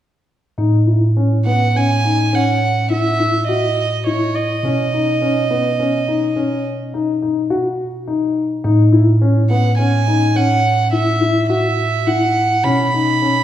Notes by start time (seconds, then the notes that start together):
0.58 A2 D#4
0.87 E4
1.17 C#4
1.45 B3 F#5
1.76 C#4 G#5
2.04 D#4
2.33 C#4 F#5
2.90 E4 E5
3.20 E4
3.48 F#4 D#5
4.07 E4 C#5
4.35 D#5
4.63 B2 C#4
4.93 D#4
5.22 C#4
5.51 B3
5.80 C#4
6.08 D#4
6.36 C#4
6.94 D#4
7.22 D#4
7.50 F#4
8.08 D#4
8.64 A2 D#4
8.92 E4
9.22 C#4
9.50 B3 F#5
9.78 C#4 G#5
10.07 D#4
10.36 C#4 F#5
10.92 E4 E5
11.21 E4
11.50 F#4 E5
12.07 E4 F#5
12.64 B2 C#4 B5
12.93 D#4
13.22 C#4